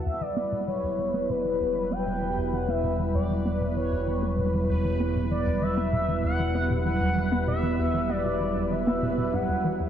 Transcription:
<<
  \new Staff \with { instrumentName = "Analog synth lead" } { \time 4/4 \key e \dorian \tempo 4 = 97 e''16 d''8. cis''4 b'4 g''4 | fis''16 e''8. d''4 cis''4. r8 | r8 d''8 e''4 fis''4 fis''4 | e''4 d''4 e''4 fis''4 | }
  \new Staff \with { instrumentName = "Synth texture" } { \time 4/4 \key e \dorian b'1~ | b'1~ | b'1~ | b'1 | }
  \new Staff \with { instrumentName = "Analog synth pad" } { \time 4/4 \key e \dorian <fis g b e' b'>1~ | <fis g b e' b'>1~ | <fis g b e' b'>1~ | <fis g b e' b'>1 | }
  \new Staff \with { instrumentName = "Synth arpeggio sound" } { \clef bass \time 4/4 \key e \dorian e,16 e16 b16 b,16 e16 e,16 e16 b16 b,16 e16 e,16 e16 b16 b,16 e16 e,16 | e16 b16 b,16 e16 e,16 e16 b16 b,16 e16 e,16 e16 b16 b,16 e16 e,16 e16 | b16 b,16 e16 e,16 e16 b16 b,16 e16 e,16 e16 b16 b,16 e16 e,16 e16 b16 | b,16 e16 e,16 e16 b16 b,16 e16 e,16 e16 b16 b,16 b,16 g,16 e,16 e16 e,16 | }
  \new Staff \with { instrumentName = "Analog synth bass" } { \clef bass \time 4/4 \key e \dorian e,,1~ | e,,1~ | e,,1~ | e,,1 | }
>>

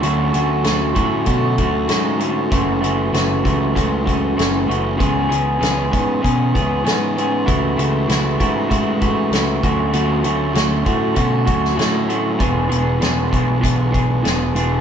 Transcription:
<<
  \new Staff \with { instrumentName = "Clean electric guitar" } { \time 4/4 \key fis \minor \tempo 4 = 97 <d fis a cis' fis'>8 <d fis a cis' fis'>8 <d fis a cis' fis'>8 <d fis a cis' fis'>8 <d fis a cis' fis'>8 <d fis a cis' fis'>8 <d fis a cis' fis'>8 <d fis a cis' fis'>8 | <fis, cis e a cis' fis'>8 <fis, cis e a cis' fis'>8 <fis, cis e a cis' fis'>8 <fis, cis e a cis' fis'>8 <fis, cis e a cis' fis'>8 <fis, cis e a cis' fis'>8 <fis, cis e a cis' fis'>8 <fis, cis e a cis' fis'>8 | <cis e b cis' gis'>8 <cis e b cis' gis'>8 <cis e b cis' gis'>8 <cis e b cis' gis'>8 <cis e b cis' gis'>8 <cis e b cis' gis'>8 <cis e b cis' gis'>8 <cis e b cis' gis'>8 | <cis e a e' fis'>8 <cis e a e' fis'>8 <cis e a e' fis'>8 <cis e a e' fis'>8 <cis e a e' fis'>8 <cis e a e' fis'>8 <cis e a e' fis'>8 <d fis a cis' fis'>8 |
<d fis a cis' fis'>8 <d fis a cis' fis'>8 <d fis a cis' fis'>8 <d fis a cis' fis'>8 <d fis a cis' fis'>8 <d fis a cis' fis'>8 <d fis a cis' fis'>8 <d fis a cis' fis'>8 | <e b d' gis'>8 <e b d' gis'>8 <e b d' gis'>8 <e b d' gis'>8 <e b d' gis'>8 <e b d' gis'>8 <e b d' gis'>8 <e b d' gis'>8 | }
  \new Staff \with { instrumentName = "Picked electric bass" } { \clef bass \time 4/4 \key fis \minor d,8 d,8 d,8 a,8 b,8 d,8 gis,4 | fis,,8 fis,,8 fis,,8 cis,8 cis,4 fis,,8 fis,,8 | cis,8 cis,8 cis,8 gis,8 b,8 cis,8 gis,4 | cis,8 cis,8 cis,8 gis,8 gis,4 cis,8 d,8 |
d,8 d,8 d,8 a,8 b,8 d,8 a,4 | e,,8 e,,8 e,,8 b,,8 b,,4 e,,8 e,,8 | }
  \new DrumStaff \with { instrumentName = "Drums" } \drummode { \time 4/4 hh8 hh8 <hh sn>8 <hh bd>8 <hh bd>8 <hh bd>8 <hh sn>8 hh8 | <hh bd>8 hh8 <hh sn>8 <hh bd>8 <hh bd>8 <hh bd>8 <hh sn>8 hh8 | <hh bd>8 hh8 <hh sn>8 <hh bd>8 <hh bd>8 <hh bd>8 <hh sn>8 hh8 | <hh bd>8 hh8 <hh sn>8 <hh bd>8 <hh bd>8 <hh bd>8 <hh sn>8 <hh bd>8 |
hh8 hh8 <hh sn>8 <hh bd>8 <hh bd>8 <hh bd>16 sn16 <hh sn>8 hh8 | <hh bd>8 hh8 <hh sn>8 <hh bd>8 <hh bd>8 <hh bd>8 <hh sn>8 hh8 | }
>>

